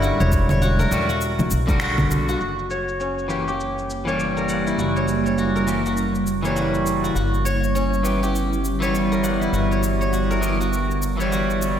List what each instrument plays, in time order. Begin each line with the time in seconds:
Already playing: clean electric guitar D3 G3 F#5, guzheng C#4 E4 A#4 C#5 F#5
0.02 guzheng F#4, shaker
0.20 upright bass E1, guzheng C#5, shaker
0.32 kick, shaker
0.49 guzheng C#5, muted conga, high conga, low conga, shaker
0.62 guzheng F#4, shaker
0.79 guzheng A#4, low conga, shaker
0.91 upright bass E1, clean electric guitar D3 G3 F#4, high conga, shaker
1.09 guzheng F#4, muted conga, shaker
1.21 shaker
1.39 muted conga, high conga, low conga, shaker
1.51 upright bass B1, shaker
1.67 clean electric guitar D3 G3, guzheng A#4, kick, high conga, low conga, shaker
1.71 clean electric guitar F#4
1.80 guzheng F#4, finger snap, shaker
1.98 kick, low conga, shaker
2.11 shaker
2.29 guzheng F#4, shaker
2.40 upright bass F#1, ambient pad C#3 G3 A#3 E4 F#5, guzheng F#4, shaker
2.59 shaker
2.70 guzheng C#5, shaker
2.88 shaker
3.00 guzheng C#4, shaker
3.19 shaker
3.28 clean electric guitar E3 A#3 G4, shaker
3.48 guzheng G4, shaker
3.60 shaker
3.78 shaker
3.90 shaker
4.05 clean electric guitar E3 G3 A#3, guzheng C#5, shaker
4.20 shaker
4.37 guzheng A#4, shaker
4.49 guzheng F#5, shaker
4.67 guzheng E4, shaker
4.78 upright bass F#1, guzheng F#4, shaker
4.96 guzheng C#5, shaker
5.08 shaker
5.26 guzheng C#5, shaker
5.38 guzheng F#4, shaker
5.56 guzheng A#4, shaker
5.67 clean electric guitar E3 A#3 G4, shaker
5.86 guzheng F#4, shaker
5.97 shaker
6.15 shaker
6.27 shaker
6.43 clean electric guitar E3 A#3, guzheng C#5, shaker
6.47 clean electric guitar G3
6.56 guzheng F#4, shaker
6.74 shaker
6.86 shaker
7.04 guzheng F#4, shaker
7.15 upright bass G1, ambient pad D3 G3 B3, guzheng F#4, shaker
7.34 shaker
7.45 guzheng C#5, shaker
7.64 shaker
7.75 guzheng C#4, shaker
7.94 shaker
8.03 clean electric guitar E3 B3 G4, shaker
8.23 guzheng G4, shaker
8.35 shaker
8.53 shaker
8.65 shaker
8.80 clean electric guitar E3 G3 B3, guzheng C#5, shaker
8.95 shaker
9.12 guzheng A#4, shaker
9.24 guzheng F#5, shaker
9.41 guzheng E4, shaker
9.53 upright bass G1, guzheng F#4, shaker
9.71 guzheng C#5, shaker
9.83 shaker
10.01 guzheng C#5, shaker
10.13 guzheng F#4, shaker
10.30 guzheng A#4, shaker
10.41 clean electric guitar E3 B3 G4, shaker
10.60 guzheng F#4, shaker
10.73 shaker
10.91 shaker
11.02 shaker
11.17 clean electric guitar E3 B3, guzheng C#5, shaker
11.21 clean electric guitar G3
11.32 guzheng F#4, shaker
11.50 shaker
11.62 shaker